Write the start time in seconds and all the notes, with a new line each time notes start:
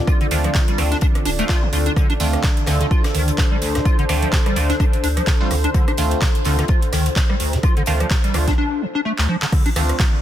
Already playing: D3 C4 D4 F4 A4 D5
0.07 F4, kick, cross-stick, closed hi-hat
0.21 D3, closed hi-hat
0.31 D2 D#3 A3 C4 D4 F4, closed hi-hat, open hi-hat
0.44 F3, cross-stick, closed hi-hat
0.55 C3, kick, snare, clap, closed hi-hat
0.68 G3, closed hi-hat
0.78 D2 C3 A3 C4 D4 F4, cross-stick, closed hi-hat, open hi-hat
0.92 D4, snare, closed hi-hat
1.01 D4, kick, closed hi-hat
1.15 cross-stick, closed hi-hat
1.25 D1 D4, closed hi-hat, open hi-hat
1.39 A3 C4 D4 F4, closed hi-hat
1.49 F4, kick, cross-stick, snare, clap, closed hi-hat
1.62 D3
1.73 D2 A3 C4 D4 F4, closed hi-hat, open hi-hat
1.86 D4, closed hi-hat
1.96 D3 D4 A4, kick, cross-stick, closed hi-hat
2.10 D4, closed hi-hat
2.20 D2 D#3 A3 C4 D4 F4, closed hi-hat, open hi-hat
2.33 cross-stick, closed hi-hat
2.44 C3, kick, snare, clap, closed hi-hat
2.57 closed hi-hat
2.66 D2 D3 A3 C4 D4 F4 C5, cross-stick, snare, closed hi-hat, open hi-hat
2.80 D3, closed hi-hat
2.91 F4, kick, closed hi-hat
3.04 cross-stick, snare, closed hi-hat
3.14 D2 D#3, open hi-hat
3.28 D3, closed hi-hat
3.38 C3, kick, cross-stick, snare, clap, closed hi-hat
3.51 G3
3.62 D2, closed hi-hat, open hi-hat
3.75 D3, cross-stick, snare, closed hi-hat
3.85 F4, kick, closed hi-hat
3.99 D3, closed hi-hat
4.09 D2 D#3 A3 C4 D4 F4, cross-stick, closed hi-hat, open hi-hat
4.22 F3, closed hi-hat
4.32 C3, kick, snare, clap, closed hi-hat
4.46 G3, cross-stick, closed hi-hat
4.56 D2 C3 A3 C4 D4 F4, closed hi-hat, open hi-hat
4.70 D4, snare, closed hi-hat
4.80 D4, kick, cross-stick, closed hi-hat
4.93 closed hi-hat
5.03 D2 D4, closed hi-hat, open hi-hat
5.17 F3, cross-stick, closed hi-hat
5.27 C3, kick, snare, clap, closed hi-hat
5.40 G3 A3 C4 D4 F4
5.51 D2 C3, cross-stick, closed hi-hat, open hi-hat
5.64 D4, closed hi-hat
5.74 D3, kick, closed hi-hat
5.88 D4, cross-stick, closed hi-hat
5.97 D2 D#3 A3 C4 D4 F4, closed hi-hat, open hi-hat
6.11 closed hi-hat
6.22 C3, kick, cross-stick, snare, clap, closed hi-hat
6.35 closed hi-hat
6.45 D2 D3 A3 C4 D4 F4, snare, closed hi-hat, open hi-hat
6.59 D3, cross-stick, snare, closed hi-hat
6.68 F4, kick, closed hi-hat
6.82 closed hi-hat
6.93 D2 D#3, cross-stick, snare, closed hi-hat, open hi-hat
7.06 D3, closed hi-hat
7.16 C3, kick, snare, clap, closed hi-hat
7.30 G3, cross-stick
7.40 D2, closed hi-hat, open hi-hat
7.53 D3, snare, closed hi-hat
7.63 F4, kick, cross-stick, closed hi-hat
7.77 D3, closed hi-hat
7.86 D2 D#3 A3 C4 D4 F4, closed hi-hat, open hi-hat
8.00 F3, cross-stick, closed hi-hat
8.11 C3, kick, snare, clap, closed hi-hat
8.24 G3, closed hi-hat
8.34 D2 C3 A3 C4 D4 F4, cross-stick, closed hi-hat, open hi-hat
8.47 D4, kick, snare, closed hi-hat
8.58 D4
8.82 D3
8.95 D4
9.05 A3
9.18 D2, clap
9.29 F3
9.42 D3, clap
9.52 D3 C4 D4 F4, kick, cross-stick, closed hi-hat, crash
9.66 D4, closed hi-hat
9.76 D2 D#3 A3 C4 D4 F4, cross-stick, closed hi-hat, open hi-hat
9.84 D5
9.89 cross-stick, closed hi-hat
9.97 C3 A4, kick, snare, clap, closed hi-hat